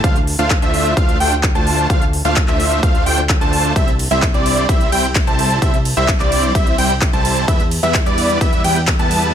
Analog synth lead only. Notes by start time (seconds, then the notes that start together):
0.04 F5
0.39 F5
0.62 E5
0.97 F5
1.20 G5
1.55 A5
1.90 F5
2.25 F5
2.48 E5
2.83 F5
3.06 G5
3.41 A5
3.76 E5
4.11 E5
4.34 D5
4.69 E5
4.92 G5
5.27 A5
5.62 E5
5.97 E5
6.20 D5
6.55 E5
6.78 G5
7.13 A5
7.48 E5
7.83 E5
8.06 D5
8.41 E5
8.64 G5
8.99 A5